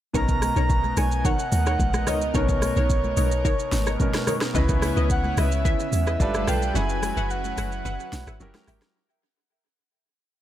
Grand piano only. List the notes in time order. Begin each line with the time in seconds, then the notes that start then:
0.13 B2 B3 C#4 D#4 A#4
2.34 B2 B3 C#4 D#4 A#4
4.00 B2 B3 C#4 D#4 A#4
4.54 C#3 B3 C#4 E4 B4
6.20 G3 D4 F4 A4 B4
6.74 F#3 C#4 E4 G#4 B4
8.40 F#3 C#4 E4 G4 A#4